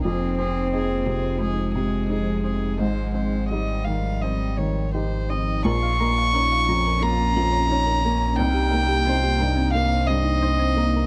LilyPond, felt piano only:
\new Staff \with { instrumentName = "Felt piano" } { \time 4/4 \key bes \dorian \tempo 4 = 88 f,8 c'8 <ees' aes'>8 c8 c'8 c8 <ees' aes'>8 c'8 | aes,8 c'8 <ees' g'>8 ees8 c'8 ees8 <ees' g'>8 c'8 | bes,,8 bes8 <des' des''>8 f,8 bes8 f,8 <des' des''>8 bes8 | c,8 bes8 <ees' c''>8 g,8 bes8 g,8 <ees' c''>8 bes8 | }